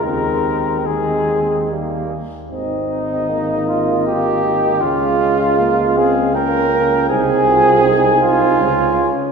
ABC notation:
X:1
M:3/4
L:1/8
Q:1/4=78
K:Ab
V:1 name="Cornet"
B2 A2 z2 | e6 | f4 g2 | a4 a z |]
V:2 name="Trumpet"
C2 C2 B, z | z E2 F G2 | F3 A B2 | A3 F2 z |]
V:3 name="French horn"
E4- E z | E4 F E | D D B, C D2 | E F E2 D2 |]
V:4 name="Euphonium"
A,2 A,2 G, z | C2 B,4 | A,4 B, B, | C4- C z |]
V:5 name="Tuba" clef=bass
E,,4- E,, z | A,,,6 | D,,6 | C,,4 D,, z |]